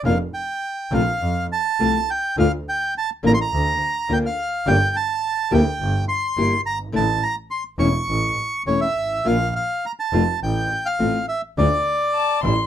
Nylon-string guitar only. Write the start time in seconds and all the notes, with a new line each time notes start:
0.05 F3 A#3 D4 F4
0.91 C3 F3 A3 C4 F4
1.79 C3 F3 A3 C4 F4
2.37 D3 A3 D4 F4
3.23 D3 A#3 D4 F4
4.09 D3 A#3 D4 F4
4.66 D3 G3 A#3 D4 G4
5.51 G3 A#3 E4 G4
6.37 G3 A#3 E4 G4
6.92 D3 A3 D4 E4
7.78 E3 A3 C#4 E4
8.66 E3 A3 C#4 E4
9.25 F3 A#3 D4 F4
10.13 F3 A3 C4 F4
10.99 F3 A3 C4 F4
11.57 D3 A3 D4 F4
12.44 E3 G3 E4